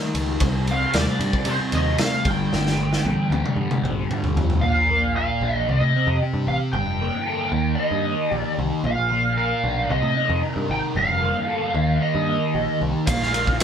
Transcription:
0.00 0.41 D#3 medium
0.00 0.42 A#3 medium
0.00 0.43 D#4 medium
0.15 0.37 C#2 medium
0.15 ride medium
0.40 0.85 C2 medium
0.40 0.93 C3 medium
0.40 0.72 G3 medium
0.40 kick medium
0.40 ride medium
0.46 0.68 C4 medium
0.67 0.97 C4 medium
0.67 0.96 F5 medium
0.67 ride medium
0.72 0.96 G3 medium
0.94 1.05 D#2 medium
0.94 1.45 C3 medium
0.94 1.23 G3 medium
0.94 1.50 D5 medium
0.94 snare loud
0.94 ride medium
0.98 1.19 C4 medium
1.20 1.31 G2 medium
1.20 1.48 C4 medium
1.20 ride medium
1.24 1.48 G3 medium
1.33 kick medium
1.45 1.57 C3 medium
1.45 1.97 C3 medium
1.45 1.76 G3 medium
1.45 1.56 C5 medium
1.45 ride medium
1.50 1.72 C4 loud
1.72 1.95 D#2 medium
1.72 2.01 C4 medium
1.72 2.00 D#5 medium
1.72 ride medium
1.77 1.99 G3 medium
1.98 2.24 C3 medium
1.98 2.25 G3 medium
1.98 2.26 C4 medium
1.98 2.27 F5 medium
1.98 snare loud
1.98 ride medium
2.25 2.47 G1 medium
2.25 2.52 D3 medium
2.25 2.54 G3 medium
2.25 4.07 G5 loud
2.25 kick medium
2.25 ride medium
2.29 2.50 G2 medium
2.51 2.96 G1 medium
2.51 3.03 G2 medium
2.51 2.80 D3 medium
2.51 2.77 G3 medium
2.51 snare medium
2.67 snare soft
2.78 3.05 D3 medium
2.78 3.06 G3 medium
2.93 snare medium
3.04 3.16 A#1 medium
3.04 3.56 G2 medium
3.04 3.32 D3 medium
3.04 3.29 G3 medium
3.04 high tom medium
3.30 3.42 D2 medium
3.30 3.58 D3 medium
3.30 3.59 G3 medium
3.30 high tom medium
3.46 mid tom medium
3.56 3.68 G2 medium
3.56 4.08 G2 loud
3.56 3.86 D3 medium
3.60 3.82 G3 medium
3.71 mid tom medium
3.83 4.05 A#1 medium
3.83 4.10 D3 soft
3.83 4.11 G3 medium
3.83 mid tom medium
4.09 4.61 G2 medium
4.09 4.62 D3 medium
4.09 4.62 G3 medium
4.09 mid tom medium
4.24 floor tom medium
4.37 4.58 F2 medium
4.37 floor tom medium
4.50 floor tom medium
4.61 4.73 A#1 loud
4.61 5.68 A#2 medium
4.61 5.15 F5 loud
4.74 5.30 A#1 medium
4.90 5.72 A#3 medium
5.16 5.69 F4 medium
5.16 5.65 F5 medium
5.41 5.63 A#1 medium
5.41 5.69 D4 medium
5.68 5.79 C2 loud
5.68 6.74 C3 medium
5.68 6.19 D#5 medium
5.81 5.92 A2 medium
5.96 6.46 C4 medium
6.07 6.18 F2 medium
6.22 6.74 G4 medium
6.34 6.45 G2 medium
6.47 6.58 A1 medium
6.47 6.74 C4 medium
6.47 6.55 F5 medium
6.73 6.84 G1 loud
6.73 7.53 G2 medium
6.73 7.75 G5 loud
6.86 7.08 F1 medium
7.01 7.79 A#3 medium
7.26 7.53 A4 medium
7.52 7.74 D#2 medium
7.52 8.85 D#3 medium
7.75 8.28 D#5 medium
7.79 9.11 A#3 medium
7.91 8.14 G2 medium
8.05 8.57 D#4 medium
8.28 8.43 A#1 medium
8.28 8.84 G4 medium
8.28 8.52 D5 medium
8.58 8.69 C2 loud
8.58 8.85 D#4 medium
8.84 8.95 A#1 loud
8.84 9.90 A#2 medium
8.84 9.35 F5 loud
8.98 9.53 A#1 medium
9.11 9.94 A#3 medium
9.37 9.94 A#4 medium
9.37 9.90 F5 medium
9.64 9.86 B1 medium
9.64 9.91 D4 medium
9.90 10.01 C2 loud
9.90 10.96 C3 medium
9.90 10.40 D#5 medium
10.02 10.14 A2 medium
10.17 10.68 D#4 medium
10.29 10.41 F2 medium
10.43 11.47 A#4 medium
10.56 10.67 G2 medium
10.69 10.81 G#1 medium
10.69 10.96 D#4 medium
10.69 10.78 G5 medium
10.95 11.07 G1 loud
10.95 11.76 G2 medium
10.95 11.99 F5 loud
11.08 11.31 F1 medium
11.22 12.01 A#3 medium
11.48 11.75 A4 medium
11.74 11.97 D#2 medium
11.74 13.08 D#3 medium
12.02 13.34 A#3 medium
12.02 12.78 D#5 medium
12.15 12.37 G2 medium
12.29 12.80 D#4 medium
12.55 12.66 A#1 medium
12.55 13.08 G4 medium
12.81 12.93 C2 loud
12.81 13.08 D#4 medium
13.07 13.19 A#1 loud
13.07 13.63 A#2 medium
13.07 13.60 F5 loud
13.07 kick loud
13.07 ride medium
13.07 maracas loud
13.21 13.63 A#1 medium
13.21 snare soft
13.34 13.63 A#3 medium
13.34 ride medium
13.34 maracas medium
13.47 kick medium
13.60 ride loud

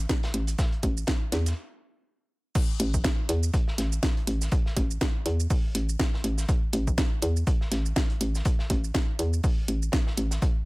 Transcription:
0.09 kick loud
0.09 snare medium
0.09 closed hi-hat medium
0.09 shaker soft
0.23 snare loud
0.23 closed hi-hat medium
0.34 0.55 A1 medium
0.34 closed hi-hat medium
0.34 closed hi-hat soft
0.47 closed hi-hat medium
0.47 shaker medium
0.59 kick loud
0.59 snare loud
0.59 closed hi-hat medium
0.59 shaker soft
0.72 closed hi-hat soft
0.83 1.04 A1 loud
0.83 kick medium
0.83 closed hi-hat medium
0.97 shaker medium
1.07 kick loud
1.07 snare loud
1.07 snare medium
1.07 closed hi-hat medium
1.07 shaker soft
1.32 1.54 E2 medium
1.32 snare medium
1.32 closed hi-hat medium
1.46 snare soft
1.46 closed hi-hat soft
1.46 shaker medium
2.55 kick loud
2.55 closed hi-hat medium
2.55 crash loud
2.55 shaker soft
2.79 3.01 A1 loud
2.79 closed hi-hat medium
2.94 kick medium
2.94 shaker medium
3.04 kick loud
3.04 snare loud
3.04 closed hi-hat medium
3.04 shaker soft
3.29 3.50 E2 loud
3.29 closed hi-hat loud
3.29 closed hi-hat medium
3.43 shaker medium
3.54 kick loud
3.54 closed hi-hat medium
3.54 shaker soft
3.68 snare medium
3.78 3.99 A1 medium
3.78 snare medium
3.78 closed hi-hat medium
3.92 shaker medium
4.03 kick loud
4.03 snare medium
4.03 snare loud
4.03 closed hi-hat medium
4.03 shaker soft
4.17 closed hi-hat soft
4.27 4.49 A1 medium
4.27 closed hi-hat medium
4.41 snare soft
4.41 shaker medium
4.52 kick loud
4.52 closed hi-hat medium
4.52 shaker soft
4.66 snare medium
4.77 4.98 A1 loud
4.77 kick medium
4.77 closed hi-hat medium
4.77 closed hi-hat loud
4.91 shaker medium
5.01 kick loud
5.01 snare loud
5.01 closed hi-hat medium
5.01 shaker soft
5.26 5.47 E2 loud
5.26 closed hi-hat medium
5.40 shaker medium
5.50 kick loud
5.50 open hi-hat medium
5.50 shaker soft
5.75 5.96 A1 medium
5.75 closed hi-hat loud
5.75 closed hi-hat medium
5.89 shaker medium
5.99 kick loud
5.99 snare loud
5.99 closed hi-hat medium
5.99 shaker soft
6.14 snare medium
6.24 6.45 A1 medium
6.24 closed hi-hat loud
6.24 closed hi-hat medium
6.38 snare medium
6.38 shaker medium
6.48 kick loud
6.48 closed hi-hat medium
6.48 shaker soft
6.73 6.94 A1 loud
6.73 closed hi-hat medium
6.73 closed hi-hat loud
6.87 kick medium
6.87 shaker medium
6.98 kick loud
6.98 snare medium
6.98 snare loud
6.98 closed hi-hat medium
6.98 shaker soft
7.22 7.44 E2 medium
7.22 closed hi-hat medium
7.22 closed hi-hat loud
7.36 shaker medium
7.47 kick loud
7.47 closed hi-hat medium
7.47 shaker soft
7.61 snare soft
7.72 7.93 A1 medium
7.72 snare soft
7.72 closed hi-hat loud
7.72 closed hi-hat medium
7.86 shaker medium
7.96 kick loud
7.96 snare medium
7.96 snare loud
7.96 closed hi-hat medium
7.96 shaker soft
8.10 closed hi-hat soft
8.21 8.42 A1 medium
8.21 closed hi-hat loud
8.21 closed hi-hat medium
8.35 snare soft
8.35 shaker medium
8.45 kick loud
8.45 closed hi-hat medium
8.45 shaker soft
8.59 snare medium
8.70 8.91 A1 loud
8.70 kick medium
8.70 closed hi-hat loud
8.70 closed hi-hat medium
8.84 shaker medium
8.94 kick loud
8.94 snare loud
8.94 closed hi-hat medium
8.94 shaker soft
9.19 9.40 E2 medium
9.19 closed hi-hat loud
9.19 closed hi-hat medium
9.33 shaker medium
9.43 kick loud
9.43 open hi-hat medium
9.43 shaker soft
9.68 9.90 A1 medium
9.68 closed hi-hat medium
9.68 closed hi-hat loud
9.82 shaker medium
9.92 kick loud
9.92 snare loud
9.92 snare medium
9.92 closed hi-hat medium
9.92 shaker soft
10.07 snare medium
10.17 10.39 A1 medium
10.17 closed hi-hat medium
10.17 closed hi-hat loud
10.31 snare medium
10.31 shaker medium
10.42 kick loud
10.42 closed hi-hat medium
10.42 shaker soft

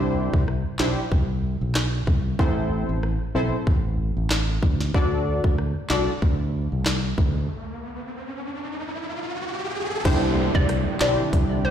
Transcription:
0.00 0.28 C2 loud
0.00 0.43 D4 medium
0.00 0.43 E4 medium
0.00 0.43 G4 medium
0.00 0.43 C5 loud
0.34 0.62 C2 medium
0.34 kick medium
0.48 cross-stick medium
0.79 0.95 B1 medium
0.79 1.01 D4 medium
0.79 1.01 E4 medium
0.79 1.01 G4 medium
0.79 1.01 C5 medium
0.79 snare loud
0.79 clap loud
1.12 1.56 C2 loud
1.12 kick medium
1.61 2.02 B1 medium
1.75 cross-stick medium
1.75 snare loud
1.75 clap medium
2.07 2.36 C2 medium
2.07 kick medium
2.39 2.83 A1 loud
2.39 2.98 C4 medium
2.39 2.98 E4 medium
2.39 2.99 A4 medium
2.39 2.99 C5 loud
2.39 kick loud
2.89 3.17 A1 medium
3.03 cross-stick medium
3.35 3.51 B1 medium
3.35 3.56 C4 medium
3.35 3.56 E4 medium
3.35 3.56 A4 medium
3.35 3.56 C5 medium
3.67 4.11 A1 loud
3.67 kick medium
4.17 4.57 A1 medium
4.30 cross-stick medium
4.30 snare loud
4.30 clap medium
4.63 4.91 D2 medium
4.63 kick medium
4.80 snare medium
4.94 5.38 D2 medium
4.94 5.54 D4 medium
4.94 5.54 F#4 medium
4.94 5.54 A4 medium
4.94 5.54 D5 loud
4.94 kick loud
4.94 riser medium
5.44 5.72 D2 medium
5.44 kick medium
5.58 cross-stick medium
5.90 6.06 C2 loud
5.90 6.11 D4 medium
5.90 6.11 F#4 medium
5.90 6.11 A4 medium
5.90 6.11 D5 medium
5.90 snare loud
5.90 clap medium
6.22 6.66 D2 loud
6.22 kick medium
6.72 7.13 C2 medium
6.86 cross-stick medium
6.86 snare loud
6.86 clap medium
7.18 7.46 D2 medium
7.18 kick medium
10.05 10.49 C2 loud
10.05 11.71 D3 medium
10.05 11.71 C4 medium
10.05 10.64 D4 medium
10.05 11.71 D4 medium
10.05 10.64 E4 medium
10.05 11.71 E4 medium
10.05 10.65 G4 medium
10.05 11.71 G4 medium
10.05 10.65 C5 loud
10.05 kick loud
10.05 closed hi-hat medium
10.05 crash loud
10.05 downlifter medium
10.55 10.83 C2 loud
10.55 10.65 D5 medium
10.55 kick loud
10.69 cross-stick medium
10.69 closed hi-hat medium
11.00 11.17 B1 medium
11.00 11.22 D4 medium
11.00 11.22 E4 medium
11.00 11.22 G4 medium
11.00 11.22 C5 medium
11.00 11.14 D5 medium
11.00 snare loud
11.00 clap loud
11.33 11.71 C2 loud
11.33 kick medium
11.33 closed hi-hat medium
11.65 11.71 C5 medium

